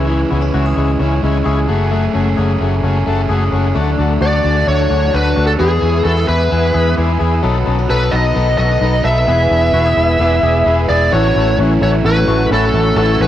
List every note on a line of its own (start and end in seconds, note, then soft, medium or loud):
0.00 0.23 C#2 medium
0.00 0.21 C#4 medium
0.00 0.22 E4 medium
0.00 0.22 G#4 loud
0.00 0.54 G#4 medium
0.08 0.31 C#3 medium
0.08 1.74 E3 medium
0.08 0.31 G#3 medium
0.08 0.32 C#4 medium
0.08 0.30 E4 loud
0.30 0.50 C#2 medium
0.30 0.42 B3 medium
0.30 0.45 C#4 medium
0.30 0.55 C#4 medium
0.30 0.45 E4 medium
0.30 0.54 E4 medium
0.30 0.46 G#4 medium
0.34 0.54 G#3 medium
0.42 0.99 C#4 soft
0.53 0.73 C#2 medium
0.53 0.99 C#3 loud
0.53 1.00 G#3 medium
0.53 0.68 C#4 medium
0.53 1.01 C#4 medium
0.53 0.68 E4 medium
0.53 1.01 E4 medium
0.53 0.66 F#4 medium
0.53 0.69 G#4 loud
0.66 1.44 G#4 medium
0.76 0.96 C#2 loud
0.76 1.23 G#3 medium
0.76 0.91 C#4 medium
0.76 0.91 E4 medium
0.76 0.91 G#4 loud
0.99 1.19 C#2 medium
0.99 1.23 C#3 medium
0.99 1.23 G#3 medium
0.99 1.14 C#4 medium
0.99 2.13 C#4 medium
0.99 1.22 C#4 medium
0.99 1.14 E4 medium
0.99 1.21 E4 medium
0.99 1.15 G#4 medium
1.22 1.42 C#2 medium
1.22 1.68 G#3 medium
1.22 1.44 G#3 soft
1.22 1.38 C#4 loud
1.22 1.45 C#4 medium
1.22 1.45 E4 medium
1.22 1.38 E4 loud
1.22 1.38 G#4 loud
1.43 1.65 C#2 medium
1.43 1.68 C#3 medium
1.43 1.69 G#3 medium
1.43 1.59 C#4 loud
1.43 1.68 C#4 loud
1.43 1.60 E4 loud
1.43 1.68 E4 medium
1.43 1.60 G#4 loud
1.43 1.94 G#4 medium
1.68 2.06 F#1 loud
1.68 1.91 F#3 medium
1.68 2.05 A3 loud
1.68 1.91 A3 medium
1.68 1.92 C#4 medium
1.68 2.06 F#4 medium
1.68 1.91 G#4 medium
1.68 2.06 G#4 loud
1.91 2.14 F#2 medium
1.91 2.15 C#3 medium
1.91 2.15 F#3 medium
1.91 2.60 A3 medium
1.91 2.15 A3 loud
1.91 2.14 C#4 medium
1.91 2.13 G#4 loud
2.13 2.34 F#1 medium
2.13 2.29 A3 medium
2.13 2.38 A3 medium
2.13 2.82 C#4 medium
2.13 2.38 C#4 medium
2.13 2.29 F#4 medium
2.13 2.38 G#4 medium
2.13 2.30 G#4 medium
2.18 2.37 F#3 medium
2.37 2.57 F#1 loud
2.37 2.84 F#2 medium
2.37 2.84 C#3 medium
2.37 2.83 F#3 medium
2.37 2.52 A3 medium
2.37 2.85 A3 medium
2.37 2.84 C#4 loud
2.37 2.52 F#4 medium
2.37 3.28 G#4 medium
2.37 2.53 G#4 loud
2.37 2.85 G#4 loud
2.60 2.80 F#1 loud
2.60 3.06 A3 medium
2.60 2.75 A3 medium
2.60 2.75 F#4 medium
2.60 2.76 G#4 medium
2.83 3.02 F#1 loud
2.83 3.07 F#3 medium
2.83 2.98 A3 medium
2.83 3.07 A3 medium
2.83 3.51 C#4 medium
2.83 3.06 C#4 medium
2.83 2.99 F#4 medium
2.83 2.99 G#4 medium
2.83 3.05 G#4 medium
3.06 3.26 F#1 medium
3.06 3.30 F#3 soft
3.06 3.74 A3 medium
3.06 3.22 A3 loud
3.06 3.30 A3 medium
3.06 3.30 C#4 medium
3.06 3.22 F#4 loud
3.06 3.30 G#4 medium
3.06 3.22 A4 loud
3.29 3.48 F#1 medium
3.29 3.53 F#2 medium
3.29 3.53 C#3 medium
3.29 3.53 F#3 medium
3.29 3.44 A3 loud
3.29 3.53 A3 loud
3.29 3.52 C#4 medium
3.29 3.45 F#4 loud
3.29 3.75 G#4 medium
3.29 3.45 G#4 loud
3.29 3.50 G#4 medium
3.51 3.71 F#1 loud
3.51 3.74 F#3 soft
3.51 3.68 A3 medium
3.51 3.74 A3 medium
3.51 3.80 C#4 medium
3.51 3.76 C#4 medium
3.51 3.68 F#4 medium
3.51 3.75 G#4 medium
3.51 3.68 G#4 medium
3.75 3.95 D2 loud
3.75 4.21 D3 medium
3.75 4.19 F#3 medium
3.75 4.66 A3 medium
3.75 4.21 A3 medium
3.75 3.90 D4 loud
3.75 5.58 D4 medium
3.75 4.22 D4 loud
3.75 4.20 F#4 medium
3.75 3.90 F#4 loud
3.75 4.22 F#4 medium
3.75 5.58 A4 medium
3.75 3.91 A4 loud
3.75 5.58 F#5 medium
3.75 5.58 A5 medium
3.98 4.18 D2 medium
3.98 4.43 D4 medium
3.98 4.13 D4 medium
3.98 4.13 F#4 medium
3.98 4.14 A4 medium
4.20 4.40 D2 loud
4.20 4.44 F#3 medium
4.20 4.45 A3 medium
4.20 4.36 D4 medium
4.20 4.45 D4 medium
4.20 4.89 F#4 medium
4.20 4.37 F#4 medium
4.20 4.37 A4 medium
4.20 4.68 D5 loud
4.25 4.43 F#4 medium
4.44 4.63 D2 loud
4.44 4.68 A3 soft
4.44 5.12 D4 medium
4.44 4.59 D4 medium
4.44 4.68 D4 soft
4.44 4.68 F#4 soft
4.44 4.60 F#4 medium
4.44 4.60 G#4 medium
4.67 4.86 D2 medium
4.67 5.14 D3 medium
4.67 5.12 F#3 medium
4.67 5.58 A3 medium
4.67 5.14 A3 medium
4.67 4.82 D4 loud
4.67 5.15 D4 medium
4.67 4.82 F#4 medium
4.67 5.15 F#4 medium
4.67 4.83 A4 loud
4.67 5.15 C#5 loud
4.90 5.10 D2 medium
4.90 5.05 D4 medium
4.90 5.35 F#4 medium
4.90 5.05 F#4 medium
4.90 5.06 G#4 medium
5.13 5.33 D2 medium
5.13 5.36 F#3 medium
5.13 5.37 A3 medium
5.13 5.28 D4 medium
5.13 5.64 D4 medium
5.13 5.36 D4 medium
5.13 5.28 F#4 medium
5.13 5.29 B4 medium
5.13 5.46 B4 medium
5.17 5.35 F#4 medium
5.36 5.56 D2 loud
5.36 5.60 A3 soft
5.36 5.51 D4 medium
5.36 5.60 D4 soft
5.36 5.59 F#4 soft
5.36 5.59 F#4 medium
5.36 5.51 F#4 medium
5.36 5.52 A4 medium
5.47 5.52 A4 medium
5.58 5.79 E2 loud
5.58 6.05 E3 medium
5.58 6.02 G#3 medium
5.58 6.51 B3 medium
5.58 6.04 B3 medium
5.58 5.74 E4 loud
5.58 6.05 E4 medium
5.58 6.04 G#4 medium
5.58 6.05 G#4 medium
5.58 5.74 G#4 medium
5.58 6.05 G#4 medium
5.58 7.41 B4 medium
5.58 5.75 B4 loud
5.58 7.41 E5 medium
5.58 7.41 G#5 medium
5.58 7.41 E6 medium
5.81 6.01 E2 loud
5.81 5.97 E4 medium
5.81 6.27 E4 medium
5.81 5.97 G#4 medium
5.81 5.97 C#5 medium
6.03 6.24 E2 loud
6.03 6.49 G#3 medium
6.03 6.50 B3 medium
6.03 6.19 E4 medium
6.03 6.50 E4 medium
6.03 6.17 F#4 medium
6.03 6.20 G#4 medium
6.03 6.50 G#4 medium
6.03 6.28 A4 medium
6.03 6.20 B4 medium
6.17 6.73 G#4 medium
6.28 6.48 E2 medium
6.28 6.43 E4 medium
6.28 6.96 E4 medium
6.28 6.43 G#4 medium
6.28 6.93 B4 medium
6.28 6.44 D5 medium
6.50 6.71 E2 loud
6.50 6.97 E3 medium
6.50 6.96 G#3 medium
6.50 6.97 B3 medium
6.50 7.70 B3 medium
6.50 6.97 E4 medium
6.50 6.66 E4 loud
6.50 6.98 G#4 medium
6.50 6.66 G#4 medium
6.50 6.67 B4 loud
6.74 6.94 E2 loud
6.74 6.89 E4 medium
6.74 7.19 G#4 medium
6.74 6.89 G#4 medium
6.74 6.90 B4 medium
6.97 7.17 E2 loud
6.97 7.20 G#3 medium
6.97 7.21 B3 medium
6.97 7.12 E4 medium
6.97 7.48 E4 medium
6.97 7.20 E4 medium
6.97 7.12 G#4 medium
6.97 7.18 G#4 medium
6.97 7.12 D5 loud
7.19 7.39 E2 loud
7.19 7.42 B3 soft
7.19 7.34 E4 medium
7.19 7.44 E4 medium
7.19 7.43 G#4 medium
7.19 7.35 G#4 medium
7.19 7.43 G#4 medium
7.19 7.35 B4 loud
7.42 7.63 B1 loud
7.42 7.89 B2 medium
7.42 7.89 D#3 medium
7.42 9.28 F#3 medium
7.42 7.86 F#3 medium
7.42 7.89 B3 medium
7.42 7.58 D#4 loud
7.42 7.89 D#4 loud
7.42 7.58 A4 loud
7.42 7.89 A4 medium
7.42 7.90 A4 medium
7.42 7.58 B4 loud
7.42 11.09 B4 medium
7.42 9.27 F#5 medium
7.42 9.26 A5 medium
7.42 9.26 D#6 medium
7.65 7.86 B1 medium
7.65 7.79 C#4 medium
7.65 7.81 D#4 medium
7.65 7.81 A4 medium
7.65 7.81 B4 loud
7.79 8.11 D#4 medium
7.88 8.09 B1 loud
7.88 8.34 F#3 medium
7.88 8.36 B3 medium
7.88 8.04 D#4 medium
7.88 8.35 D#4 medium
7.88 8.04 A4 medium
7.88 8.56 A4 medium
7.88 8.36 A4 medium
7.88 8.13 B4 medium
7.88 8.04 B4 medium
8.11 8.32 B1 loud
8.11 8.27 D#4 medium
8.11 8.80 D#4 medium
8.11 8.27 A4 medium
8.11 8.27 B4 medium
8.11 8.57 D#5 loud
8.34 8.55 B1 loud
8.34 8.81 B2 medium
8.34 8.82 D#3 medium
8.34 8.80 F#3 medium
8.34 9.26 B3 medium
8.34 8.82 B3 medium
8.34 8.49 D#4 loud
8.34 8.82 D#4 medium
8.34 8.50 A4 medium
8.34 8.82 A4 medium
8.34 8.50 B4 loud
8.58 8.78 B1 loud
8.58 8.73 D#4 medium
8.58 9.03 A4 medium
8.58 8.73 A4 medium
8.58 8.73 C#5 medium
8.58 9.04 D#5 loud
8.80 9.00 B1 loud
8.80 9.05 F#3 medium
8.80 9.05 B3 medium
8.80 8.96 D#4 medium
8.80 9.32 D#4 medium
8.80 9.04 D#4 medium
8.80 8.96 A4 medium
8.80 8.97 B4 medium
8.85 9.03 A4 medium
9.04 9.24 B1 medium
9.04 9.27 F#3 soft
9.04 9.27 B3 soft
9.04 9.19 D#4 medium
9.04 9.28 D#4 soft
9.04 9.27 A4 medium
9.04 9.19 A4 medium
9.04 9.20 B4 medium
9.04 10.85 E5 loud
9.27 9.47 E1 loud
9.27 10.17 E3 medium
9.27 9.71 G#3 medium
9.27 10.19 B3 medium
9.27 9.73 B3 medium
9.27 9.42 E4 loud
9.27 9.74 E4 medium
9.27 9.42 G#4 medium
9.27 9.73 G#4 medium
9.27 9.74 G#4 medium
9.27 9.43 B4 loud
9.27 11.11 E5 medium
9.27 11.11 G#5 medium
9.27 11.11 E6 medium
9.51 9.70 E1 loud
9.51 9.63 D4 medium
9.51 9.65 E4 medium
9.51 9.66 G#4 medium
9.51 9.66 B4 medium
9.63 9.96 E4 medium
9.72 9.93 E1 loud
9.72 10.18 G#3 medium
9.72 10.18 B3 medium
9.72 10.20 E4 medium
9.72 9.89 E4 medium
9.72 9.86 F#4 medium
9.72 9.89 G#4 medium
9.72 10.19 G#4 medium
9.72 9.89 B4 loud
9.86 10.42 G#4 medium
9.96 10.16 E1 loud
9.96 10.11 E4 medium
9.96 10.66 E4 medium
9.96 10.12 G#4 medium
9.96 10.12 B4 loud
10.18 10.38 E1 loud
10.18 11.16 E3 medium
10.18 10.64 G#3 medium
10.18 10.65 B3 loud
10.18 11.17 B3 medium
10.18 10.67 E4 loud
10.18 10.35 E4 loud
10.18 10.66 G#4 loud
10.18 10.35 G#4 loud
10.18 10.35 D5 loud
10.43 10.62 E1 loud
10.43 10.58 E4 loud
10.43 10.88 G#4 medium
10.43 10.58 G#4 medium
10.43 10.59 D5 loud
10.65 10.85 E1 medium
10.65 11.12 G#3 medium
10.65 11.12 B3 medium
10.65 11.58 E4 medium
10.65 10.81 E4 loud
10.65 11.15 E4 medium
10.65 10.81 G#4 medium
10.65 11.13 G#4 medium
10.65 10.82 B4 loud
10.89 11.08 E1 loud
10.89 11.04 E4 medium
10.89 11.12 G#4 medium
10.89 11.05 G#4 medium
10.89 11.05 B4 loud
10.89 11.13 D5 loud
11.12 11.31 A1 loud
11.12 11.35 A2 medium
11.12 12.96 E3 medium
11.12 11.36 F#3 medium
11.12 11.27 C#4 loud
11.12 11.36 C#4 medium
11.12 11.28 E4 medium
11.12 11.35 E4 medium
11.12 12.27 F#4 medium
11.12 11.28 F#4 medium
11.12 13.28 A4 medium
11.12 11.28 A4 loud
11.12 11.56 C#5 loud
11.12 13.28 E5 medium
11.12 13.28 F#5 medium
11.12 13.28 C#6 medium
11.35 11.54 A1 medium
11.35 11.59 F#3 soft
11.35 11.81 A3 medium
11.35 11.51 C#4 loud
11.35 11.59 C#4 medium
11.35 11.59 E4 medium
11.35 11.51 E4 medium
11.35 11.51 F#4 medium
11.35 11.51 A4 loud
11.58 11.77 A1 loud
11.58 11.81 A2 medium
11.58 11.82 F#3 medium
11.58 12.04 C#4 medium
11.58 11.73 C#4 medium
11.58 11.81 C#4 medium
11.58 11.74 E4 medium
11.58 11.80 E4 medium
11.58 11.74 F#4 medium
11.58 11.74 G#4 medium
11.81 12.00 A1 loud
11.81 12.05 F#3 soft
11.81 12.74 A3 medium
11.81 11.96 C#4 medium
11.81 12.05 C#4 soft
11.81 12.05 E4 medium
11.81 11.96 E4 medium
11.81 11.96 F#4 medium
11.81 11.97 A4 medium
11.81 11.89 C#5 loud
12.05 12.23 A1 loud
12.05 12.51 A2 medium
12.05 12.53 F#3 medium
12.05 12.17 B3 medium
12.05 12.19 C#4 medium
12.05 12.52 C#4 loud
12.05 12.20 E4 medium
12.05 12.52 E4 loud
12.05 12.20 F#4 medium
12.05 12.20 A4 medium
12.05 12.48 B4 loud
12.17 12.50 C#4 medium
12.28 12.47 A1 loud
12.28 12.42 C#4 medium
12.28 12.43 E4 medium
12.28 12.97 F#4 medium
12.28 12.43 F#4 medium
12.28 12.43 A4 medium
12.51 12.69 A1 medium
12.51 12.97 A2 medium
12.51 12.99 F#3 medium
12.51 12.65 C#4 loud
12.51 13.28 C#4 medium
12.51 12.98 C#4 medium
12.51 12.65 E4 medium
12.51 12.66 F#4 medium
12.51 12.96 A4 loud
12.51 12.66 B4 loud
12.55 12.99 E4 medium
12.74 12.93 A1 loud
12.74 13.20 A3 medium
12.74 12.89 C#4 medium
12.74 12.89 E4 medium
12.74 12.89 F#4 medium
12.74 12.89 A4 medium
12.96 13.15 A1 loud
12.96 13.28 A2 medium
12.96 13.28 E3 medium
12.96 13.28 F#3 medium
12.96 13.11 C#4 loud
12.96 13.28 C#4 medium
12.96 13.12 E4 medium
12.96 13.28 F#4 medium
12.96 13.12 F#4 loud
12.96 13.21 A4 medium
12.96 13.12 A4 loud
13.01 13.28 E4 medium
13.20 13.28 A1 loud
13.20 13.28 A3 medium
13.20 13.28 C#4 loud
13.20 13.28 E4 medium
13.20 13.28 F#4 medium
13.20 13.28 G#4 loud
13.20 13.28 B4 medium